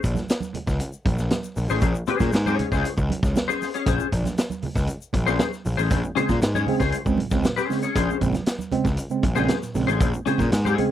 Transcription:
0.03 A#1, kick, closed hi-hat, shaker
0.15 snare, closed hi-hat, high conga, shaker
0.29 snare, closed hi-hat, muted conga, shaker
0.40 high conga, shaker
0.54 muted picked electric bass stroke, closed hi-hat, low conga
0.67 C#2, kick, snare, shaker
0.79 closed hi-hat, muted conga, shaker
0.93 shaker
1.05 A#1, kick, closed hi-hat, high conga
1.18 snare, shaker
1.30 snare, closed hi-hat, high conga, shaker
1.44 shaker
1.56 A#1, open hi-hat, muted conga, shaker
1.69 A1 C#4 G#4 C5, shaker
1.81 A#1, kick, closed hi-hat, muted conga, low conga, shaker
1.95 shaker
2.07 C#4 G#4 C5, muted picked electric bass stroke, closed hi-hat, muted conga, shaker
2.20 A#2, kick, snare, closed hi-hat, high conga, shaker
2.32 G#2, snare, closed hi-hat, muted conga, shaker
2.46 C#4 G#4 C#5, high conga, shaker
2.59 closed hi-hat, muted conga, low conga
2.72 C#2 C#4 G#4 C5, kick, snare, shaker
2.85 closed hi-hat, shaker
2.98 C#2, kick, shaker
3.10 closed hi-hat, high conga
3.23 C#2, kick, snare, shaker
3.36 snare, closed hi-hat, muted conga, high conga, shaker
3.48 C#4 G#4 C5, snare, shaker
3.62 snare, open hi-hat, muted conga, shaker
3.74 C#4 G#4 C#5, closed hi-hat, shaker
3.86 A#1 C#4 G#4 C5, kick, closed hi-hat, muted conga, low conga, shaker
4.00 shaker
4.12 A#1, kick, closed hi-hat, shaker
4.24 snare, closed hi-hat, high conga, shaker
4.38 snare, closed hi-hat, shaker
4.50 high conga, shaker
4.62 muted picked electric bass stroke, open hi-hat, low conga
4.75 C#2, kick, snare, shaker
4.87 closed hi-hat, muted conga, shaker
5.02 shaker
5.13 A#1, kick, closed hi-hat, high conga
5.26 C#4 G#4 C5, snare, shaker
5.39 snare, closed hi-hat, high conga, shaker
5.52 snare, shaker
5.65 A#1, open hi-hat, high conga, shaker
5.77 A1 C#4 G#4 C5, shaker
5.90 A#1 A#2, kick, closed hi-hat, muted conga, low conga, shaker
6.03 G#3 C4, shaker
6.15 C#3 G#3 C4 C#4 G#4 C5, muted picked electric bass stroke, closed hi-hat, muted conga, shaker
6.29 A#2, kick, snare, closed hi-hat, high conga, shaker
6.42 G#2, snare, closed hi-hat, muted conga, shaker
6.55 C#4 G#4 C#5, high conga, shaker
6.67 C#3 G#3 C4, open hi-hat, low conga
6.80 C#2 C#4 G#4 C5, kick, snare, shaker
6.92 closed hi-hat, shaker
7.06 C#2 C#3 G#3 C4, kick, shaker
7.17 A#2, closed hi-hat, high conga
7.31 C#2 C#3 G#3 C4, kick, snare, shaker
7.43 A#2, snare, closed hi-hat, high conga, shaker
7.56 C#4 G#4 C5, snare, shaker
7.70 C#3 G#3 C4, snare, open hi-hat, muted conga, shaker
7.82 G#3 C4 C#4 G#4 C#5, closed hi-hat, shaker
7.96 A#1 A#2 C#4 G#4 C5, kick, closed hi-hat, muted conga, low conga, shaker
8.08 G#3 C4, shaker
8.21 A#1 C#3 G#3 C4, kick, closed hi-hat, shaker
8.33 snare, closed hi-hat, high conga, shaker
8.46 snare, closed hi-hat, shaker
8.59 high conga, shaker
8.72 C#3 G#3 C4, muted picked electric bass stroke, closed hi-hat, low conga
8.85 C#2, kick, snare, shaker
8.97 closed hi-hat, shaker
9.10 C#3 G#3 C4, shaker
9.23 A#1 A#2, kick, closed hi-hat, muted conga, high conga
9.36 C#3 G#3 C4 C#4 G#4 C5, snare, shaker
9.48 G#3 C4, snare, closed hi-hat, high conga, shaker
9.62 A#2, snare, shaker
9.75 A#1 C#3 G#3 C4, open hi-hat, muted conga, shaker
9.87 A1 C#4 G#4 C5, closed hi-hat, shaker
10.00 A#1 A#2, kick, closed hi-hat, low conga, shaker
10.14 G#3 C4, shaker
10.26 C#3 G#3 C4 C#4 G#4 C5, muted picked electric bass stroke, closed hi-hat, shaker
10.38 A#2, kick, snare, high conga, shaker
10.52 G#2, snare, closed hi-hat, muted conga, shaker
10.65 C#4 G#4 C#5, high conga, shaker
10.78 C#3 G#3 C4, closed hi-hat, muted conga, low conga

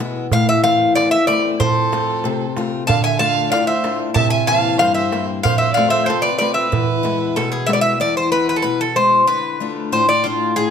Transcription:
Already playing: B2
0.00 G#3 B3 E4, darbuka tek
0.16 darbuka tek
0.31 A2 F5, darbuka dum
0.48 E5, darbuka tek
0.64 E3 A3 C4 F5, darbuka tek
0.80 darbuka tek
0.95 E2 D5, darbuka tek
1.11 E5
1.27 A3 C4 E4 D5, darbuka tek
1.44 darbuka tek
1.60 F2 A4 C5, darbuka dum
1.76 darbuka tek
1.92 A3 C4 F4, darbuka tek
2.24 C3, darbuka tek
2.41 darbuka tek
2.57 A3 C4 F4, darbuka tek
2.73 darbuka tek
2.87 D3 F5 A5, darbuka dum
3.04 E5 G#5, darbuka tek
3.19 A3 D4 F4 F5 A5, darbuka tek
3.37 darbuka tek
3.52 A2 D5 F5, darbuka tek
3.67 C5 E5
3.84 A3 D4 F4, darbuka tek
4.00 darbuka tek
4.14 C3 E5 A5, darbuka dum
4.30 E5 G#5, darbuka tek
4.47 E3 A#3 C4 F5 A5, darbuka tek
4.64 darbuka tek
4.79 G2 C5 F5, darbuka tek
4.94 C5 E5
5.12 A#3 C4 E4, darbuka tek
5.29 darbuka tek
5.43 F2 C5 F5, darbuka dum
5.58 C5 E5, darbuka tek
5.73 A3 D5 F5, darbuka tek
5.78 C4 F4
5.90 C5 E5, darbuka tek
6.06 C3 A4 C5, darbuka tek
6.22 B4 D5
6.38 A3 C4 F4 B4 D5, darbuka tek
6.54 B4 E5, darbuka tek
6.72 E2, darbuka dum
7.03 G#3 B3 E4, darbuka tek
7.36 B2 A4, darbuka tek
7.52 G#4
7.67 G#3 B3 E4 E5, darbuka tek
7.73 D5
7.81 E5
7.85 darbuka tek
8.00 E2 D5
8.17 C5
8.32 G#3 B3 E4 B4
8.49 B4
8.56 A4
8.62 B2 B4
8.81 A4
8.96 G#3 E4 C5
9.27 D3 B4
9.60 A3 D4 F4
9.92 A2 C5
10.09 D5
10.24 A3 D4 F4
10.56 A2 G#4

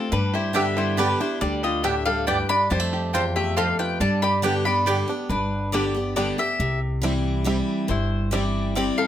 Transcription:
Already playing: C4 F4 A4
0.12 G2 G3 D4 B4
0.34 E4 G4 C5
0.53 D3 G3 B3 D4 G4 D5 E5 G5
0.77 G3 E4 C5
0.97 D3 G3 B3 D4 G4 B4 D5 G5
1.20 B3 D4 E4 G4 C5
1.41 D2 D3 G3 G4 D5
1.63 F4 G4 D#5
1.83 A2 B3 D4 G4 D5 E5 G5
2.06 G3 A4 F5
2.27 G2 B3 G4 B4 D5 G5
2.49 D4 D5 B5
2.70 F2 G3 C5 A5
2.80 A3
2.93 G4
3.13 E2 C4 F4 C5 G5 A5
3.36 A3 G4 E5
3.57 F2 C4 F4 G4 A4 C5 F5 A5
3.79 F4 B4 G5
4.00 G2 G3 D5 A5
4.22 G4 D5 B5
4.42 D3 G3 B3 D4 G4 B4 D5 G5
4.65 G3 B3 G4 D5 B5
4.86 D3 G3 B3 G4 D5 G5
5.08 B3 D4 G4
5.29 G1 G2 D4 B4
5.72 D3 G3 B3 D4 G4 D5
5.94 B3 G4
6.16 D3 G3 B3 D4 G4 D5
6.38 B3 G4 E5
6.60 C2 C3
7.02 E3 G3 C4 E4
7.44 E3 G3 C4 E4
7.88 G1 G2 E4 C5
8.31 E3 G3 C4 E4 G4 D5
8.75 E3 G3 C4 E4 G4 D5
8.98 A4 F5

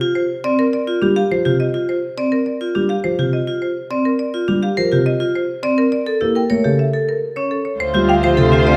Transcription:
0.01 F4
0.15 C5
0.44 C4 D5
0.59 A#4
0.73 D5
0.87 F4
1.02 G3 D4 G4
1.16 G4 F5
1.31 F3 C5
1.45 C3 F4 G4
1.60 D#5
1.74 F4
1.89 C5
2.18 C4 D5
2.32 A#4
2.46 D5
2.61 F4
2.75 G3 D4 G4
2.89 G4 F5
3.04 F3 C5
3.19 C3 F4 G4
3.33 D#5
3.47 F4
3.62 C5
3.90 C4 D5
4.05 A#4
4.19 D5
4.34 F4
4.48 G3 D4 G4
4.63 G4 F5
4.77 F3 A#4 C5
4.92 C3 F4 G4
5.06 D#5
5.20 F4
5.35 C5
5.63 C4 D5
5.78 A#4
5.92 D5
6.06 A4
6.21 A#3 E4 G4
6.35 A#4 G5
6.50 A3 A#4 C#5
6.64 C#3 G4 A4
6.79 E5
6.93 A4
7.09 A#4
7.36 C#4 C#5
7.51 A4
7.65 C#5
7.80 D2 F4 C5
7.94 G3 F4 G4
8.09 D4 F5 G5
8.23 F3 G4 C5 F5
8.37 C3 G4 A4
8.52 F4 E5
8.66 C4 D5

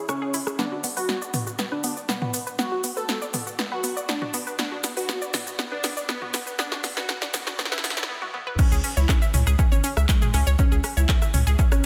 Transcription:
0.09 C#4 C#6, cross-stick, shaker
0.22 G#4
0.34 E4, open hi-hat, shaker
0.47 G#4, cross-stick, shaker
0.59 B3 D4, snare, shaker
0.72 F#4
0.84 B3, open hi-hat, shaker
0.97 F#4 B4, open hi-hat, shaker
1.09 B3, snare, shaker
1.22 D5, shaker
1.34 B3, mid tom, open hi-hat, shaker
1.47 F#4, shaker
1.59 B3, snare, shaker
1.72 D4 B4
1.84 B3, open hi-hat, shaker
1.97 D5, shaker
2.09 B3, snare, shaker
2.22 F#4, mid tom
2.34 B3, open hi-hat, shaker
2.47 B4, shaker
2.59 B3 F#4, snare, shaker
2.72 F#4
2.84 B3, open hi-hat, shaker
2.97 A4 B4, shaker
3.09 B3, snare, shaker
3.22 D5, shaker
3.34 B3, mid tom, open hi-hat, shaker
3.47 F#4, shaker
3.59 B3, snare, shaker
3.72 F#4 B4
3.84 B3, open hi-hat, shaker
3.97 D5, shaker
4.09 B3 D4, snare, shaker
4.22 F#4, mid tom
4.34 B3, open hi-hat, shaker
4.47 B4, shaker
4.59 B3 D4, snare, shaker
4.72 F#4
4.84 B3, snare, open hi-hat, shaker
4.97 F#4 B4, open hi-hat, shaker
5.09 B3, snare, shaker
5.22 D5, shaker
5.34 B3, snare, mid tom, open hi-hat, shaker
5.47 F#4, shaker
5.59 B3, snare, shaker
5.72 D4 B4
5.84 B3, snare, open hi-hat, shaker
5.97 D5, shaker
6.09 B3, snare, shaker
6.22 F#4, mid tom
6.34 B3, snare, open hi-hat, shaker
6.47 B4, shaker
6.59 B3 D4, snare, shaker
6.72 F#4, snare, shaker
6.84 B3, snare, open hi-hat, shaker
6.97 F#4 B4, snare, shaker
7.09 B3, snare, shaker
7.22 D5, snare, shaker
7.34 B3, snare, mid tom, open hi-hat, shaker
7.47 F#4, snare, shaker
7.59 B3, snare, shaker
7.65 snare
7.72 E4 B4, snare, shaker
7.78 snare
7.84 B3, snare, open hi-hat, shaker
7.90 snare
7.97 D5, snare, shaker
8.03 snare
8.09 B3
8.22 F#4, high tom
8.34 B3, mid tom
8.47 B4, mid tom
8.59 C#4, kick, cross-stick, crash, shaker
8.72 C#2 G#4, shaker
8.84 C#4, open hi-hat, shaker
8.97 C#2 E4 C#5, shaker
9.09 C#4, kick, cross-stick, clap, shaker
9.22 E5, shaker
9.34 C#2 C#4, mid tom, open hi-hat, shaker
9.47 C#2 G#4, cross-stick, shaker
9.59 C#4, kick, shaker
9.72 G#1 C#4 C#5, shaker
9.84 C#4, open hi-hat, shaker
9.97 C#2 E5, cross-stick, shaker
10.09 G#3 C#4, kick, clap, shaker
10.22 G#4, mid tom, shaker
10.34 C#2 C#4, cross-stick, open hi-hat, shaker
10.47 C#2 C#5, shaker
10.59 C#4, kick, shaker
10.72 C#2 G#4, shaker
10.84 C#4, cross-stick, open hi-hat, shaker
10.97 C#2 E4 C#5, shaker
11.09 C#4, kick, clap, shaker
11.22 E5, cross-stick, shaker
11.34 C#2 C#4, mid tom, open hi-hat, shaker
11.47 C#2 G#4, shaker
11.59 C#4, kick, shaker
11.72 G#1 C#4 C#5, cross-stick, shaker

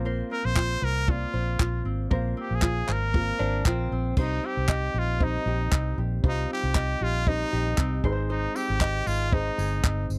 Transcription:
Already playing: A#1 A#3 C4 F4 C5
0.05 A#4 C5
0.31 C4 A#4
0.45 A#1 C5
0.56 F4, kick, clap
0.81 C2 A#4 C5
1.07 A#3 C4 F4 D5, kick
1.33 A#1 C5
1.60 A#1 F4, kick, clap
1.85 G#1 C4
2.10 A#1 A#3 C4 F4 A#4 C5, kick
2.37 C4 G4
2.51 A#1
2.55 G#4
2.62 F4, kick, clap
2.88 G#1 A#4 C5, clap
3.13 A#3 C4 F4 A#4, kick
3.39 G#1 D4 C5
3.65 A#1 C4 F4, kick, clap
3.91 A#1 C4
4.17 C2 G3 C4 D#4 C5, kick, crash
4.43 C4 G4
4.57 C2
4.69 D#5, kick, clap
4.94 A#1 G4
4.99 F4
5.19 G3 C4 D#4 C5 D#5, kick
5.24 D#4
5.46 A#1 G4
5.72 C2 C4, kick, clap
5.98 A#1 G4
6.23 C2 G3 C4 D#4 F4 C5, kick
6.28 D#4
6.50 C4 G4
6.63 C2
6.75 D#5, kick, clap
7.01 A#1 F4 G4
7.26 G3 C4 D#4 C5 D#5, kick
7.52 A#1 G4
7.78 C2 C4, kick, clap
8.04 G#1 G#3 C4 D#4 B4 C5, kick
8.12 C5
8.30 D#4 C5
8.56 C4 G4, tambourine
8.70 G#1
8.81 D#5, kick, clap
9.06 G#1 F4 G#4, tambourine
9.32 G#3 C4 D#4 C5 D#5, kick
9.58 G1 G#4, tambourine
9.84 G1 C4, kick, clap
10.10 G1, tambourine

